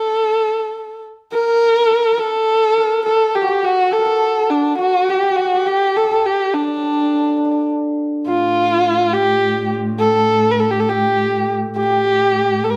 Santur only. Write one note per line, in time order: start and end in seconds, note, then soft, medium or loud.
1.32 1.90 A#4 medium
1.90 2.11 A#4 medium
2.12 2.24 A#4 medium
2.18 2.83 A4 medium
2.77 3.12 A#4 medium
3.06 3.90 A4 medium
3.35 3.47 G4 medium
3.42 3.54 F#4 medium
3.48 3.69 G4 medium
3.63 4.78 F#4 medium
3.91 4.04 A4 medium
3.98 4.11 A#4 medium
4.05 5.96 A4 medium
4.79 5.14 F#4 medium
5.08 5.14 G4 medium
5.14 5.22 G4 medium
5.23 5.29 G4 medium
5.30 5.38 G4 medium
5.38 5.44 G4 medium
5.44 5.54 G4 medium
5.54 5.66 G4 medium
5.66 6.03 G4 medium
5.96 6.11 A4 medium
6.04 9.14 G4 medium
6.11 9.04 A4 medium
6.53 6.61 D4 medium
6.61 6.67 D4 soft
6.67 6.76 D4 soft
6.77 6.83 D4 soft
6.83 6.91 D4 soft
6.91 6.99 D4 soft
6.99 7.06 D4 soft
7.07 7.13 D4 soft
7.14 7.21 D4 soft
7.22 7.29 D4 soft
7.29 7.36 D4 soft
7.37 7.44 D4 soft
7.45 7.51 D4 soft
7.51 11.25 D4 soft
8.27 11.64 F4 medium
9.14 10.89 G4 medium
10.02 12.76 A4 medium
10.89 11.76 G4 medium
11.76 11.82 G4 medium
11.83 11.90 G4 medium
11.90 11.96 G4 medium
11.96 12.04 G4 medium
12.04 12.12 G4 medium
12.12 12.18 G4 medium
12.19 12.31 G4 medium
12.31 12.76 G4 medium